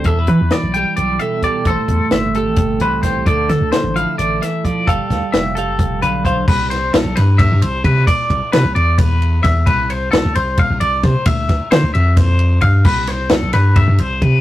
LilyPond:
<<
  \new Staff \with { instrumentName = "Clean electric guitar" } { \time 7/8 \key c \major \tempo 4 = 131 e''8 b'8 d''8 g''8 d''8 e''8 d''8 | a'4 e''8 a'4 b'8 c''8 | d''8 a'8 c''8 f''8 d''8 e''8 d''8 | a'4 e''8 a'4 b'8 c''8 |
b'8 c''8 a'8 b'8 e''8 c''8 b'8 | d''4 b'8 d''8 b'4 e''8 | b'8 c''8 a'8 c''8 f''8 d''8 c''8 | e''4 c''8 e''8 c''4 f''8 |
b'8 c''8 a'8 b'8 e''8 c''8 b'8 | }
  \new Staff \with { instrumentName = "Clean electric guitar" } { \time 7/8 \key c \major << { a'16 b'4~ b'16 g'4 a'8 g'8 | c''4. g'4 c''8 g'8 | a'4. e'2 | f''4. f''4 f''8 f''8 |
r2. r8 | r2. r8 | r2. r8 | r2. r8 |
r2. r8 | } \\ { e4. g4 b,4 | a,4. a4 e4 | d4. f8 d8 e8 f8 | g4. g'4 d4 |
r2. r8 | r2. r8 | r2. r8 | r2. r8 |
r2. r8 | } >> }
  \new Staff \with { instrumentName = "Sub bass" } { \clef bass \time 7/8 \key c \major e,8 e16 e,16 r16 b,,8 r16 b,,8 r4 | a,,16 r16 e,16 r16 g,,8. a,,16 g,,8 c,4 | d,8 d16 d,16 r16 a,,8 r16 a,,8 r4 | g,,16 r16 d,16 r16 f,,8. g,,16 f,,8 b,,4 |
c,4 c,16 b,,16 g,8. g,16 c,8 c8 | r8 c,16 r16 c16 c,16 e,4. e,8 | c,4 c,16 d,16 c,8. c,16 c,8 c16 r16 | d,8 d,16 r16 d16 d,16 f,4. g,8 |
c,4 c,16 b,,16 g,8. g,16 c,8 c8 | }
  \new DrumStaff \with { instrumentName = "Drums" } \drummode { \time 7/8 <hh bd>8 <hh bd>8 <hh sn>8 hh8 hh8 hh8 <hh bd>8 | <hh bd>8 <hh bd>8 <hh sn>8 hh8 <hh bd>8 hh8 <hh bd sn>8 | <hh bd>8 <hh bd sn>8 <hh sn>8 hh8 hh8 <hh sn>8 <hh bd>8 | <hh bd>8 <hh bd sn>8 <hh sn>8 hh8 <hh bd>8 hh8 <hh bd>8 |
<cymc bd>8 <cymr sn>8 <cymr sn>8 <cymr sn>8 <bd cymr>8 cymr8 <bd cymr>8 | <bd cymr>8 <bd cymr>8 <cymr sn>8 cymr8 <bd cymr>8 cymr8 <bd cymr sn>8 | <bd cymr>8 cymr8 <cymr sn>8 cymr8 <bd cymr>8 cymr8 <bd cymr sn>8 | <bd cymr>8 <bd cymr sn>8 <cymr sn>8 cymr8 <bd cymr sn>8 cymr8 <bd cymr>8 |
<cymc bd>8 <cymr sn>8 <cymr sn>8 <cymr sn>8 <bd cymr>8 cymr8 <bd cymr>8 | }
>>